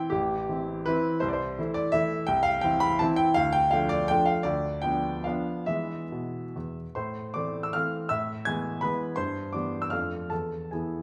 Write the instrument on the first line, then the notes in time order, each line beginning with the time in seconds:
grand piano
Already playing: G5
0.10 A1 G4
0.49 E3 C4 E4
0.86 E3 C4 E4 B4
1.20 C2 C5
1.28 D5
1.33 C5
1.59 E3 A3 E4
1.74 D5
1.92 E3 A3 E4 E5
2.27 C2 G5
2.43 F5
2.61 E3 C4 E4 G5
2.80 B5
2.99 E3 C4 E4 A5
3.16 G5
3.34 D2 F5
3.53 G5
3.71 F3 A3 D4 F5
3.89 D5
4.08 F3 A3 D4 G5
4.26 F5
4.43 D2 D5
4.82 F3 B3 D4 G5
5.24 F3 B3 D4 F5
5.66 E3 G#3 B3 E5
6.12 B2
6.56 E2
6.95 A2 C5 C6
7.34 E3 A3 C4 D5 D6
7.63 E6
7.73 E3 A3 C4 F5 F6
8.09 A2 E5 E6
8.45 E3 G#3 B3 G#5 G#6
8.81 E3 G#3 B3 B4 B5
9.16 G2 C5 C6
9.53 E3 G3 B3 D5 D6
9.82 E6
9.90 F2 F3 A3 D4 F5 F6
10.30 E2 A4 A5
10.71 E3 B3 E4 G#4 G#5